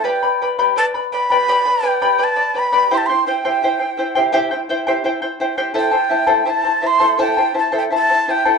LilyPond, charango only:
\new Staff \with { instrumentName = "Charango" } { \time 4/4 \key a \minor \tempo 4 = 84 <g' b' d'' g'' b''>16 <b' d'' b''>16 <b' d'' g'' b''>16 <g' b' d'' g'' b''>16 <b' d'' g'' b''>16 <b' d'' b''>16 <b' d'' g'' b''>16 <g' b' d'' g'' b''>16 <g' b' d'' g'' b''>16 <b' d'' b''>16 <b' d'' g'' b''>16 <g' b' d'' g'' b''>16 <b' d'' g'' b''>16 <b' d'' b''>16 <b' d'' g'' b''>16 <g' b' d'' g'' b''>16 | <e' g' c'' e'' g''>16 <e' c'' g''>16 <e' c'' e'' g''>16 <e' g' c'' e'' g''>16 <e' c'' e'' g''>16 <e' c'' g''>16 <e' c'' e'' g''>16 <e' g' c'' e'' g''>16 <e' g' c'' e'' g''>16 <e' c'' g''>16 <e' c'' e'' g''>16 <e' g' c'' e'' g''>16 <e' c'' e'' g''>16 <e' c'' g''>16 <e' c'' e'' g''>16 <e' g' c'' e'' g''>16 | <e' a' c'' e'' a''>16 <e' c'' a''>16 <e' c'' e'' a''>16 <e' a' c'' e'' a''>16 <e' c'' e'' a''>16 <e' c'' a''>16 <e' c'' e'' a''>16 <e' a' c'' e'' a''>16 <e' a' c'' e'' a''>16 <e' c'' a''>16 <e' c'' e'' a''>16 <e' a' c'' e'' a''>16 <e' c'' e'' a''>16 <e' c'' a''>16 <e' c'' e'' a''>16 <e' a' c'' e'' a''>16 | }